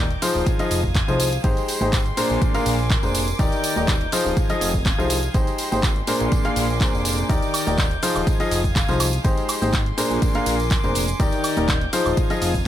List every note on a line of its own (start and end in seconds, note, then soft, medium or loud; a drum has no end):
0.00 0.17 D#1 medium
0.00 0.46 D#4 medium
0.00 0.46 D6 medium
0.00 0.46 G6 medium
0.11 closed hi-hat soft
0.22 0.56 F3 medium
0.22 0.56 D#4 medium
0.22 0.56 F4 medium
0.22 0.56 G#4 medium
0.22 0.56 C5 loud
0.22 open hi-hat loud
0.22 tambourine medium
0.35 0.43 D#1 medium
0.35 tambourine soft
0.46 1.43 F5 medium
0.46 1.43 D#6 medium
0.46 1.43 G#6 medium
0.46 kick loud
0.46 closed hi-hat medium
0.46 tambourine soft
0.59 0.77 F3 loud
0.59 0.77 D#4 medium
0.59 0.77 F4 medium
0.59 0.77 G#4 medium
0.59 0.77 D#5 loud
0.59 closed hi-hat medium
0.59 tambourine soft
0.71 1.02 F1 loud
0.71 open hi-hat loud
0.71 tambourine medium
0.84 kick medium
0.95 kick loud
0.95 clap loud
0.95 closed hi-hat medium
0.95 tambourine soft
1.08 1.39 C2 medium
1.08 1.26 F3 medium
1.08 1.26 D#4 medium
1.08 1.26 F4 medium
1.08 1.26 G#4 medium
1.08 1.26 C5 medium
1.08 tambourine soft
1.20 open hi-hat loud
1.20 tambourine loud
1.33 closed hi-hat medium
1.33 tambourine soft
1.44 1.53 G#1 loud
1.44 1.78 G#3 medium
1.44 2.17 G#3 medium
1.44 1.78 D#4 medium
1.44 1.78 G4 medium
1.44 1.78 G#4 medium
1.44 1.78 C5 loud
1.44 2.17 G5 medium
1.44 3.37 C6 medium
1.44 kick loud
1.44 closed hi-hat medium
1.44 tambourine soft
1.57 closed hi-hat soft
1.57 tambourine soft
1.68 open hi-hat loud
1.68 tambourine medium
1.81 2.12 G#1 medium
1.81 1.99 G#3 medium
1.81 1.99 D#4 medium
1.81 1.99 G4 medium
1.81 1.99 G#4 medium
1.81 1.99 C5 medium
1.81 tambourine soft
1.81 high conga medium
1.93 kick loud
1.93 clap loud
1.93 closed hi-hat medium
1.93 tambourine medium
2.06 closed hi-hat soft
2.17 2.51 A#2 medium
2.17 2.51 D4 medium
2.17 2.52 G#4 medium
2.17 2.52 A#4 medium
2.17 3.38 A#4 medium
2.17 2.51 C5 loud
2.17 3.38 G#5 medium
2.17 4.35 D6 medium
2.17 open hi-hat loud
2.17 tambourine medium
2.30 2.38 A#1 medium
2.30 tambourine soft
2.42 kick loud
2.42 closed hi-hat medium
2.42 tambourine medium
2.55 2.72 A#2 loud
2.55 2.72 D4 medium
2.55 2.72 G#4 medium
2.55 2.72 A#4 medium
2.55 2.72 F5 loud
2.55 closed hi-hat medium
2.55 tambourine soft
2.66 2.97 A#1 loud
2.66 open hi-hat loud
2.66 tambourine medium
2.79 tambourine soft
2.90 kick loud
2.90 clap loud
2.90 closed hi-hat medium
2.90 tambourine soft
3.03 3.34 F1 medium
3.03 3.21 A#2 medium
3.03 3.21 D4 medium
3.03 3.21 G#4 medium
3.03 3.21 A#4 medium
3.03 3.21 C5 medium
3.03 tambourine soft
3.14 open hi-hat loud
3.14 tambourine medium
3.28 closed hi-hat soft
3.28 tambourine soft
3.39 3.48 D#1 loud
3.39 3.74 D#3 medium
3.39 3.74 D#4 medium
3.39 4.36 D#4 medium
3.39 3.74 G4 medium
3.39 3.74 A#4 medium
3.39 3.74 D5 loud
3.39 4.36 G6 medium
3.39 kick loud
3.39 closed hi-hat medium
3.39 tambourine medium
3.52 closed hi-hat soft
3.52 tambourine soft
3.64 open hi-hat loud
3.64 tambourine medium
3.76 4.07 D#1 medium
3.76 3.94 D#3 medium
3.76 3.94 D#4 medium
3.76 3.94 G4 medium
3.76 3.94 A#4 medium
3.76 3.94 D5 medium
3.76 tambourine soft
3.76 high conga medium
3.88 kick loud
3.88 clap loud
3.88 closed hi-hat medium
3.88 tambourine medium
4.01 closed hi-hat soft
4.12 4.47 F3 medium
4.12 4.47 D#4 medium
4.12 4.47 F4 medium
4.12 4.47 G#4 medium
4.12 4.47 C5 loud
4.12 open hi-hat loud
4.12 tambourine medium
4.25 4.33 D#1 medium
4.25 tambourine soft
4.37 5.33 F5 medium
4.37 5.33 D#6 medium
4.37 5.33 G#6 medium
4.37 kick loud
4.37 closed hi-hat medium
4.37 tambourine medium
4.49 4.67 F3 medium
4.49 4.67 D#4 medium
4.49 4.67 F4 medium
4.49 4.67 G#4 medium
4.49 4.67 D#5 loud
4.49 closed hi-hat soft
4.49 tambourine soft
4.61 4.92 F1 loud
4.61 open hi-hat loud
4.61 tambourine loud
4.74 kick medium
4.85 kick loud
4.85 clap loud
4.85 closed hi-hat medium
4.85 tambourine soft
4.99 5.29 C2 medium
4.99 5.16 F3 medium
4.99 5.16 D#4 medium
4.99 5.16 F4 medium
4.99 5.16 G#4 medium
4.99 5.16 C5 medium
4.99 tambourine soft
5.10 open hi-hat loud
5.10 tambourine loud
5.23 closed hi-hat soft
5.23 tambourine soft
5.34 5.43 G#1 medium
5.34 6.07 G#3 medium
5.34 5.69 G#3 medium
5.34 5.69 D#4 medium
5.34 5.69 G4 medium
5.34 5.69 G#4 medium
5.34 5.69 C5 loud
5.34 6.07 G5 medium
5.34 7.28 C6 medium
5.34 kick loud
5.34 closed hi-hat medium
5.34 tambourine medium
5.47 closed hi-hat soft
5.47 tambourine soft
5.58 open hi-hat loud
5.58 tambourine medium
5.72 6.02 G#1 medium
5.72 5.89 G#3 medium
5.72 5.89 D#4 medium
5.72 5.89 G4 medium
5.72 5.89 G#4 medium
5.72 5.89 C5 medium
5.72 tambourine soft
5.72 high conga medium
5.83 kick loud
5.83 clap loud
5.83 closed hi-hat medium
5.83 tambourine medium
5.96 closed hi-hat soft
6.07 6.42 A#2 medium
6.07 6.42 D4 medium
6.07 6.42 G#4 medium
6.07 6.42 A#4 medium
6.07 7.28 A#4 medium
6.07 6.42 C5 medium
6.07 7.28 G#5 medium
6.07 8.25 D6 medium
6.07 open hi-hat loud
6.07 tambourine medium
6.20 6.29 A#1 medium
6.20 tambourine soft
6.32 kick loud
6.32 closed hi-hat medium
6.32 tambourine medium
6.45 6.62 A#2 medium
6.45 6.62 D4 medium
6.45 6.62 G#4 medium
6.45 6.62 A#4 medium
6.45 6.62 F5 loud
6.45 closed hi-hat soft
6.45 tambourine soft
6.56 6.88 A#1 loud
6.56 open hi-hat loud
6.56 tambourine loud
6.70 tambourine soft
6.81 7.27 A#2 medium
6.81 7.27 D4 medium
6.81 7.27 G#4 medium
6.81 7.27 A#4 medium
6.81 7.27 C5 medium
6.81 kick loud
6.81 clap loud
6.81 closed hi-hat medium
6.81 tambourine soft
6.94 7.24 F1 medium
6.94 tambourine soft
7.05 open hi-hat loud
7.05 tambourine medium
7.18 closed hi-hat soft
7.18 tambourine soft
7.29 7.39 D#1 loud
7.29 7.64 D#3 medium
7.29 7.64 D#4 medium
7.29 8.26 D#4 medium
7.29 7.64 G4 medium
7.29 7.64 A#4 medium
7.29 7.64 D5 loud
7.29 8.26 G6 medium
7.29 kick loud
7.29 closed hi-hat medium
7.29 tambourine medium
7.29 shaker soft
7.42 closed hi-hat soft
7.42 tambourine soft
7.54 open hi-hat loud
7.54 tambourine medium
7.54 high woodblock medium
7.54 shaker medium
7.67 7.97 D#1 medium
7.67 7.84 D#3 medium
7.67 7.84 D#4 medium
7.67 7.84 G4 medium
7.67 7.84 A#4 medium
7.67 7.84 D5 medium
7.67 tambourine soft
7.67 high conga medium
7.67 shaker soft
7.78 kick loud
7.78 clap loud
7.78 closed hi-hat medium
7.78 tambourine soft
7.78 shaker soft
7.91 closed hi-hat soft
8.03 8.37 F3 medium
8.03 8.37 D#4 medium
8.03 8.37 F4 medium
8.03 8.37 G#4 medium
8.03 8.37 C5 loud
8.03 open hi-hat loud
8.03 tambourine medium
8.03 shaker medium
8.15 8.24 D#1 medium
8.15 tambourine soft
8.15 high woodblock medium
8.15 shaker soft
8.27 9.24 F5 medium
8.27 9.24 D#6 medium
8.27 9.24 G#6 medium
8.27 kick loud
8.27 closed hi-hat medium
8.27 tambourine medium
8.27 shaker soft
8.40 8.57 F3 medium
8.40 8.57 D#4 medium
8.40 8.57 F4 medium
8.40 8.57 G#4 medium
8.40 8.57 D#5 loud
8.40 closed hi-hat medium
8.40 tambourine soft
8.51 8.83 F1 loud
8.51 open hi-hat loud
8.51 tambourine medium
8.51 shaker medium
8.64 kick medium
8.64 tambourine soft
8.64 shaker soft
8.76 kick loud
8.76 clap loud
8.76 closed hi-hat medium
8.76 tambourine soft
8.76 shaker soft
8.88 9.19 C2 medium
8.88 9.06 F3 medium
8.88 9.06 D#4 medium
8.88 9.06 F4 medium
8.88 9.06 G#4 medium
8.88 9.06 C5 medium
8.88 tambourine soft
9.00 open hi-hat loud
9.00 tambourine loud
9.00 high woodblock medium
9.00 shaker medium
9.13 closed hi-hat soft
9.13 tambourine soft
9.13 shaker soft
9.24 9.34 G#1 loud
9.24 9.59 G#3 medium
9.24 9.97 G#3 medium
9.24 9.59 D#4 medium
9.24 9.59 G4 medium
9.24 9.59 G#4 medium
9.24 9.59 C5 loud
9.24 9.97 G5 medium
9.24 11.18 C6 medium
9.24 kick loud
9.24 closed hi-hat medium
9.24 tambourine medium
9.24 shaker soft
9.37 closed hi-hat soft
9.37 tambourine soft
9.49 open hi-hat loud
9.49 tambourine medium
9.49 high woodblock medium
9.49 shaker medium
9.62 9.92 G#1 medium
9.62 9.79 G#3 medium
9.62 9.79 D#4 medium
9.62 9.79 G4 medium
9.62 9.79 G#4 medium
9.62 9.79 C5 medium
9.62 tambourine soft
9.62 high conga medium
9.62 shaker soft
9.73 kick loud
9.73 clap loud
9.73 closed hi-hat medium
9.73 tambourine medium
9.73 shaker soft
9.86 closed hi-hat soft
9.98 10.32 A#2 medium
9.98 10.32 D4 medium
9.98 10.32 G#4 medium
9.98 10.32 A#4 medium
9.98 11.19 A#4 medium
9.98 10.32 C5 loud
9.98 11.19 G#5 medium
9.98 12.15 D6 medium
9.98 open hi-hat loud
9.98 tambourine medium
9.98 shaker medium
10.10 10.19 A#1 loud
10.10 tambourine soft
10.10 shaker soft
10.22 kick loud
10.22 closed hi-hat medium
10.22 tambourine medium
10.22 shaker soft
10.34 10.53 A#2 loud
10.34 10.53 D4 medium
10.34 10.53 G#4 medium
10.34 10.53 A#4 medium
10.34 10.53 F5 loud
10.34 closed hi-hat medium
10.34 tambourine soft
10.46 10.78 A#1 loud
10.46 open hi-hat loud
10.46 tambourine medium
10.46 shaker medium
10.59 tambourine soft
10.59 shaker soft
10.71 kick loud
10.71 clap loud
10.71 closed hi-hat medium
10.71 tambourine soft
10.71 shaker soft
10.83 11.14 F1 loud
10.83 11.01 A#2 medium
10.83 11.01 D4 medium
10.83 11.01 G#4 medium
10.83 11.01 A#4 medium
10.83 11.01 C5 medium
10.83 tambourine soft
10.95 open hi-hat loud
10.95 tambourine medium
10.95 shaker medium
11.08 closed hi-hat soft
11.08 tambourine soft
11.08 shaker soft
11.20 11.29 D#1 loud
11.20 11.54 D#3 loud
11.20 12.16 D#4 medium
11.20 11.54 D#4 medium
11.20 11.54 G4 medium
11.20 11.54 A#4 medium
11.20 11.54 D5 loud
11.20 12.16 G6 medium
11.20 kick loud
11.20 closed hi-hat medium
11.20 tambourine soft
11.20 shaker soft
11.32 closed hi-hat soft
11.32 tambourine soft
11.44 open hi-hat loud
11.44 tambourine medium
11.44 high woodblock medium
11.44 shaker medium
11.57 11.87 D#1 medium
11.57 11.75 D#3 medium
11.57 11.75 D#4 medium
11.57 11.75 G4 medium
11.57 11.75 A#4 medium
11.57 11.75 D5 medium
11.57 tambourine soft
11.57 high conga medium
11.57 shaker soft
11.68 kick loud
11.68 clap loud
11.68 closed hi-hat medium
11.68 tambourine soft
11.68 shaker soft
11.81 closed hi-hat soft
11.93 12.27 F3 medium
11.93 12.27 D#4 medium
11.93 12.27 F4 medium
11.93 12.27 G#4 medium
11.93 12.27 C5 loud
11.93 open hi-hat loud
11.93 tambourine medium
11.93 shaker medium
12.06 12.14 D#1 medium
12.06 tambourine soft
12.06 high woodblock medium
12.06 shaker soft
12.17 12.68 F5 medium
12.17 12.68 D#6 medium
12.17 12.68 G#6 medium
12.17 kick loud
12.17 closed hi-hat medium
12.17 tambourine soft
12.17 shaker soft
12.30 12.48 F3 loud
12.30 12.48 D#4 medium
12.30 12.48 F4 medium
12.30 12.48 G#4 medium
12.30 12.48 D#5 loud
12.30 closed hi-hat medium
12.30 tambourine soft
12.42 12.68 F1 loud
12.42 open hi-hat loud
12.42 tambourine medium
12.42 shaker medium
12.54 kick medium
12.54 tambourine soft
12.54 shaker soft